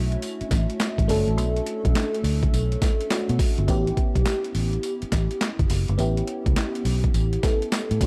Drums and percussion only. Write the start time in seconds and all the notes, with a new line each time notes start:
0.12 closed hi-hat
0.22 closed hi-hat, tambourine
0.41 closed hi-hat
0.51 kick, snare, closed hi-hat, tambourine
0.70 closed hi-hat
0.80 snare, clap, closed hi-hat, tambourine
0.98 kick, closed hi-hat
1.09 open hi-hat, tambourine
1.28 closed hi-hat
1.38 closed hi-hat, tambourine
1.56 closed hi-hat
1.66 closed hi-hat
1.85 kick, closed hi-hat
1.95 snare, clap, closed hi-hat, tambourine
2.15 closed hi-hat
2.24 open hi-hat, tambourine
2.43 kick, closed hi-hat
2.54 closed hi-hat, tambourine
2.72 closed hi-hat
2.82 kick, snare, closed hi-hat, tambourine
3.01 closed hi-hat
3.10 snare, clap, closed hi-hat, tambourine
3.29 closed hi-hat
3.39 kick, open hi-hat, tambourine
3.58 closed hi-hat
3.68 kick, closed hi-hat, tambourine
3.87 closed hi-hat
3.97 kick, closed hi-hat
4.15 kick, closed hi-hat
4.26 snare, clap, closed hi-hat, tambourine
4.44 closed hi-hat
4.55 open hi-hat, tambourine
4.73 closed hi-hat
4.83 closed hi-hat, tambourine
5.02 closed hi-hat
5.12 kick, snare, closed hi-hat, tambourine
5.31 closed hi-hat
5.41 snare, clap, closed hi-hat, tambourine
5.59 kick, closed hi-hat
5.70 open hi-hat, tambourine
5.88 closed hi-hat
5.99 closed hi-hat, tambourine
6.17 closed hi-hat
6.27 closed hi-hat
6.46 kick, closed hi-hat
6.56 snare, clap, closed hi-hat, tambourine
6.75 closed hi-hat
6.85 open hi-hat, tambourine
7.04 kick, closed hi-hat
7.14 closed hi-hat, tambourine
7.33 closed hi-hat
7.43 kick, snare, closed hi-hat, tambourine
7.62 closed hi-hat
7.72 snare, clap, closed hi-hat, tambourine
7.91 closed hi-hat
8.01 kick, open hi-hat, tambourine